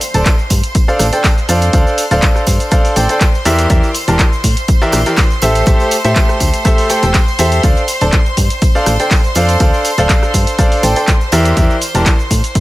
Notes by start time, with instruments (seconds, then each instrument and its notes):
Already playing: violin section C5 C6
0.01 open hi-hat, tambourine, cabasa
0.14 fm bass D1, grand piano D4 A4 C5 D5 A5, closed hi-hat, tambourine, cabasa
0.26 kick, clap, closed hi-hat, tambourine, cabasa
0.39 tambourine, cabasa
0.50 fm bass G2, kick, open hi-hat, tambourine, cabasa
0.63 closed hi-hat, tambourine, cabasa
0.75 kick, closed hi-hat, tambourine, cabasa
0.88 grand piano D4 A4 C5 D5 F5, tambourine, cabasa
0.99 fm bass A1, cross-stick, open hi-hat, tambourine, cabasa
1.13 grand piano D4 A4 C5 D5 G5, closed hi-hat, tambourine, cabasa
1.24 kick, clap, open hi-hat, tambourine, cabasa
1.38 tambourine, cabasa
1.49 fm bass F2, grand piano D4 A4 C5 D5 F5, open hi-hat, tambourine, cabasa
1.62 closed hi-hat, tambourine, cabasa
1.73 fm bass D2, grand piano D4 A4 C5 D5 F5, kick, closed hi-hat, tambourine, cabasa
1.87 tambourine, cabasa
1.98 open hi-hat, tambourine, cabasa
2.11 fm bass D1, grand piano D4 A4 C5 D5 F5, closed hi-hat, tambourine, cabasa
2.22 kick, clap, closed hi-hat, tambourine, cabasa
2.36 cross-stick, tambourine, cabasa
2.46 fm bass G2, kick, open hi-hat, tambourine, cabasa
2.60 closed hi-hat, tambourine, cabasa
2.71 grand piano D4 A4 C5 D5 F5, kick, cross-stick, closed hi-hat, tambourine, cabasa
2.85 open hi-hat, tambourine, cabasa
2.96 fm bass A1, grand piano D4 A4 C5 D5 G5, open hi-hat, tambourine, cabasa
3.09 grand piano D4 A4 C5 D5 G5, closed hi-hat, tambourine, cabasa
3.21 kick, clap, closed hi-hat, tambourine, cabasa
3.34 tambourine, cabasa
3.45 fm bass E2, grand piano E3 G4 A#4 D5 E5, open hi-hat, tambourine, cabasa
3.59 closed hi-hat, tambourine, cabasa
3.70 fm bass E2, grand piano E3 A#4 D5 E5, kick, closed hi-hat, tambourine, cabasa
3.83 tambourine, cabasa
3.95 open hi-hat, tambourine, cabasa
4.08 fm bass E1, grand piano E3 G4 A#4 D5 A5, closed hi-hat, tambourine, cabasa
4.19 kick, clap, closed hi-hat, tambourine, cabasa
4.33 tambourine, cabasa
4.44 fm bass A2, kick, open hi-hat, tambourine, cabasa
4.57 closed hi-hat, tambourine, cabasa
4.68 kick, closed hi-hat, tambourine, cabasa
4.81 grand piano E3 G4 A#4 D5 E5, tambourine, cabasa
4.92 fm bass A#1, cross-stick, open hi-hat, tambourine, cabasa
5.06 grand piano E3 G4 A#4 D5 G5, closed hi-hat, tambourine, cabasa
5.17 kick, clap, open hi-hat, tambourine, cabasa
5.30 tambourine, cabasa
5.41 fm bass A1, grand piano A3 G4 A4 C5 E5, open hi-hat, tambourine, cabasa
5.55 closed hi-hat, tambourine, cabasa
5.66 fm bass A1, grand piano A3 G4 A4 C5 E5, kick, closed hi-hat, tambourine, cabasa
5.80 tambourine, cabasa
5.91 open hi-hat, tambourine, cabasa
6.04 fm bass A2, grand piano A3 G4 A4 C5 E5, closed hi-hat, tambourine, cabasa
6.16 kick, clap, closed hi-hat, tambourine, cabasa
6.29 cross-stick, tambourine, cabasa
6.40 fm bass D2, kick, open hi-hat, tambourine, cabasa
6.54 closed hi-hat, tambourine, cabasa
6.65 grand piano A3 G4 A4 C5 E5, kick, cross-stick, closed hi-hat, tambourine, cabasa
6.78 open hi-hat, tambourine, cabasa
6.90 grand piano A3 G4 A4 C5 G5, open hi-hat, tambourine, cabasa
7.02 fm bass E1, grand piano A3 G4 A4 C5 G5, closed hi-hat, tambourine, cabasa
7.14 kick, clap, closed hi-hat, tambourine, cabasa
7.28 tambourine, cabasa
7.39 fm bass E2, grand piano G4 A4 C5 E5, open hi-hat, tambourine, cabasa
7.52 closed hi-hat, tambourine, cabasa
7.63 fm bass D2, grand piano D4 A4 C5 D5 F5, kick, closed hi-hat, tambourine, cabasa
7.76 tambourine, cabasa
7.88 open hi-hat, tambourine, cabasa
8.01 fm bass D1, grand piano D4 A4 C5 D5 A5, closed hi-hat, tambourine, cabasa
8.13 kick, clap, closed hi-hat, tambourine, cabasa
8.26 tambourine, cabasa
8.37 fm bass G2, kick, open hi-hat, tambourine, cabasa
8.50 closed hi-hat, tambourine, cabasa
8.62 kick, closed hi-hat, tambourine, cabasa
8.75 grand piano D4 A4 C5 D5 F5, tambourine, cabasa
8.86 fm bass A1, cross-stick, open hi-hat, tambourine, cabasa
9.00 grand piano D4 A4 C5 D5 G5, closed hi-hat, tambourine, cabasa
9.11 kick, clap, open hi-hat, tambourine, cabasa
9.24 tambourine, cabasa
9.35 fm bass F2, grand piano D4 A4 C5 D5 F5, open hi-hat, tambourine, cabasa
9.49 closed hi-hat, tambourine, cabasa
9.60 fm bass D2, grand piano D4 A4 C5 D5 F5, kick, closed hi-hat, tambourine, cabasa
9.74 tambourine, cabasa
9.85 open hi-hat, tambourine, cabasa
9.97 fm bass D1, grand piano D4 A4 C5 D5 F5, closed hi-hat, tambourine, cabasa
10.09 kick, clap, closed hi-hat, tambourine, cabasa
10.23 cross-stick, tambourine, cabasa
10.34 fm bass G2, kick, open hi-hat, tambourine, cabasa
10.47 closed hi-hat, tambourine, cabasa
10.59 grand piano D4 A4 C5 D5 F5, kick, cross-stick, closed hi-hat, tambourine, cabasa
10.72 open hi-hat, tambourine, cabasa
10.83 fm bass A1, grand piano D4 A4 C5 D5 G5, open hi-hat, tambourine, cabasa
10.96 grand piano D4 A4 C5 D5 G5, closed hi-hat, tambourine, cabasa
11.08 kick, clap, closed hi-hat, tambourine, cabasa
11.21 tambourine, cabasa
11.32 fm bass E2, grand piano E3 G4 A#4 D5 E5, open hi-hat, tambourine, cabasa
11.45 closed hi-hat, tambourine, cabasa
11.57 fm bass E2, grand piano E3 G4 A#4 D5 E5, kick, closed hi-hat, tambourine, cabasa
11.70 tambourine, cabasa
11.81 open hi-hat, tambourine, cabasa
11.94 fm bass E1, grand piano E3 G4 A#4 D5 A5, closed hi-hat, tambourine, cabasa
12.06 kick, clap, closed hi-hat, tambourine, cabasa
12.19 tambourine, cabasa
12.31 fm bass A2, kick, open hi-hat, tambourine, cabasa
12.44 closed hi-hat, tambourine, cabasa
12.55 kick, closed hi-hat, tambourine, cabasa